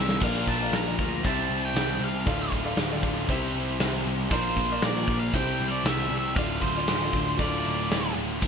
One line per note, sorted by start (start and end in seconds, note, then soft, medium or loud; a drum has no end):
0.00 0.21 C2 medium
0.00 0.20 C3 medium
0.00 0.20 G3 medium
0.00 0.21 G3 medium
0.00 0.20 C4 medium
0.00 0.21 C4 medium
0.00 0.21 E4 medium
0.00 0.21 G4 medium
0.00 0.22 C5 medium
0.00 0.22 E5 medium
0.09 snare medium
0.20 0.47 A#1 medium
0.20 0.96 A#2 medium
0.20 0.98 F3 medium
0.20 0.96 A#3 medium
0.20 1.24 D4 loud
0.20 1.24 F4 loud
0.20 0.53 A#4 medium
0.20 1.24 A#4 medium
0.20 0.54 D5 medium
0.20 0.49 F5 medium
0.20 kick loud
0.20 closed hi-hat loud
0.20 crash medium
0.24 0.54 F5 medium
0.47 0.71 A#1 medium
0.47 0.74 A5 medium
0.47 kick medium
0.47 closed hi-hat medium
0.62 0.82 A#4 medium
0.62 0.82 D5 medium
0.62 0.83 F5 medium
0.72 0.97 A#1 medium
0.72 1.25 A#5 loud
0.72 snare loud
0.72 closed hi-hat medium
0.72 tambourine loud
0.86 1.25 A#4 medium
0.86 1.25 D5 medium
0.86 1.26 F5 medium
0.97 1.24 D2 medium
0.97 1.23 F3 medium
0.97 1.22 A#3 medium
0.97 kick medium
0.97 closed hi-hat medium
1.01 1.22 A#2 medium
1.22 1.49 C2 medium
1.22 1.98 C3 loud
1.22 2.00 G3 medium
1.22 1.98 C4 loud
1.22 2.26 E4 loud
1.22 2.07 G4 medium
1.22 2.26 G4 medium
1.22 1.61 A5 loud
1.22 kick medium
1.22 closed hi-hat medium
1.26 2.07 C5 medium
1.26 2.26 C5 loud
1.26 2.08 E5 medium
1.50 1.74 C2 medium
1.50 closed hi-hat medium
1.65 2.03 G5 medium
1.74 1.99 C2 loud
1.74 snare loud
1.74 closed hi-hat medium
1.74 tambourine loud
1.99 2.25 C2 medium
1.99 2.25 G3 medium
1.99 2.24 C4 medium
1.99 closed hi-hat medium
2.03 2.25 C3 medium
2.03 2.50 F5 medium
2.25 2.51 D1 loud
2.25 3.01 D2 medium
2.25 3.03 A2 medium
2.25 3.28 A3 medium
2.25 3.28 F4 loud
2.25 2.57 A4 medium
2.25 2.57 D5 medium
2.25 2.58 F5 medium
2.25 kick loud
2.25 closed hi-hat medium
2.29 3.02 D3 loud
2.52 2.76 D1 medium
2.52 kick medium
2.52 closed hi-hat medium
2.64 2.85 A4 medium
2.64 2.86 D5 medium
2.64 2.86 F5 loud
2.77 3.02 D1 medium
2.77 snare loud
2.77 closed hi-hat medium
2.77 tambourine loud
2.91 3.29 A4 medium
2.91 3.30 D5 medium
2.91 3.30 F5 medium
3.03 3.28 D1 medium
3.03 3.28 D2 medium
3.03 3.28 A2 medium
3.03 3.27 D3 medium
3.03 kick medium
3.03 closed hi-hat medium
3.28 3.53 C2 medium
3.28 4.04 C3 loud
3.28 4.05 G3 loud
3.28 4.03 C4 loud
3.28 4.30 E4 medium
3.28 4.11 G4 loud
3.28 4.30 G4 loud
3.28 4.11 C5 medium
3.28 4.30 C5 medium
3.28 4.12 E5 loud
3.28 kick medium
3.28 closed hi-hat medium
3.54 3.79 C2 medium
3.54 closed hi-hat medium
3.80 4.05 C2 medium
3.80 snare loud
3.80 closed hi-hat loud
3.80 tambourine loud
4.05 4.30 C2 medium
4.05 4.31 G3 medium
4.05 4.29 C4 medium
4.05 closed hi-hat medium
4.09 4.29 C3 medium
4.29 4.56 A#1 medium
4.29 5.06 A#2 medium
4.29 5.07 F3 medium
4.29 5.32 D4 medium
4.29 4.62 F4 medium
4.29 5.32 F4 loud
4.29 4.62 A#4 medium
4.29 5.33 A#4 loud
4.29 4.84 C5 medium
4.29 4.63 D5 medium
4.29 kick loud
4.29 closed hi-hat loud
4.33 5.06 A#3 loud
4.56 4.81 A#1 loud
4.56 kick medium
4.56 closed hi-hat medium
4.70 4.91 F4 medium
4.70 4.91 A#4 medium
4.70 4.91 D5 medium
4.82 5.08 A#1 medium
4.82 5.18 D5 loud
4.82 snare loud
4.82 closed hi-hat medium
4.82 tambourine loud
4.95 5.34 F4 medium
4.95 5.35 A#4 medium
4.95 5.35 D5 medium
5.07 5.33 A#1 medium
5.07 5.32 A#2 medium
5.07 5.33 F3 medium
5.07 5.32 A#3 loud
5.07 kick medium
5.07 closed hi-hat medium
5.20 5.36 F5 medium
5.33 5.59 C2 medium
5.33 6.09 C3 loud
5.33 6.10 G3 loud
5.33 6.16 E4 medium
5.33 6.36 E4 loud
5.33 6.16 G4 medium
5.33 6.36 G4 medium
5.33 6.17 C5 medium
5.33 6.36 C5 loud
5.33 5.69 G5 loud
5.33 kick medium
5.33 closed hi-hat loud
5.37 6.08 C4 loud
5.60 5.84 C2 medium
5.60 closed hi-hat medium
5.68 5.84 D5 medium
5.84 6.10 C2 medium
5.84 6.16 E5 medium
5.84 snare loud
5.84 closed hi-hat medium
5.84 tambourine loud
6.09 6.36 C2 medium
6.09 6.33 C3 medium
6.09 6.35 G3 medium
6.09 6.34 C4 medium
6.09 closed hi-hat medium
6.18 6.34 E5 medium
6.34 6.61 D1 medium
6.34 7.11 D2 medium
6.34 7.12 A2 medium
6.34 7.38 A3 medium
6.34 6.68 F4 medium
6.34 6.62 F5 loud
6.34 kick loud
6.34 closed hi-hat medium
6.38 7.13 D3 loud
6.38 7.38 F4 medium
6.38 6.68 A4 medium
6.38 6.68 D5 medium
6.61 6.87 D1 medium
6.61 7.35 C5 medium
6.61 kick medium
6.61 closed hi-hat medium
6.75 6.96 F4 medium
6.75 6.96 A4 medium
6.75 6.97 D5 medium
6.87 7.12 D1 medium
6.87 snare loud
6.87 closed hi-hat medium
6.87 tambourine loud
7.00 7.36 F4 medium
7.00 7.38 A4 medium
7.00 7.38 D5 medium
7.13 7.38 D1 medium
7.13 7.39 A2 medium
7.13 7.38 D3 medium
7.13 kick medium
7.13 closed hi-hat medium
7.18 7.37 D2 medium
7.37 7.64 D1 medium
7.37 8.14 D2 loud
7.37 8.16 A2 medium
7.37 8.41 A3 loud
7.37 8.21 F4 medium
7.37 8.41 F4 loud
7.37 8.22 A4 medium
7.37 8.22 D5 medium
7.37 8.14 D5 medium
7.37 kick medium
7.37 closed hi-hat loud
7.42 8.15 D3 loud
7.65 7.89 D1 medium
7.65 closed hi-hat medium
7.90 8.15 D1 medium
7.90 snare loud
7.90 closed hi-hat loud
7.90 tambourine loud
8.16 8.41 D1 medium
8.16 8.41 A2 medium
8.16 8.41 D3 medium
8.16 closed hi-hat medium
8.21 8.41 D2 medium
8.42 8.48 D1 medium
8.42 8.48 D2 medium
8.42 8.48 A2 medium
8.42 8.48 D3 medium
8.42 kick loud
8.42 crash medium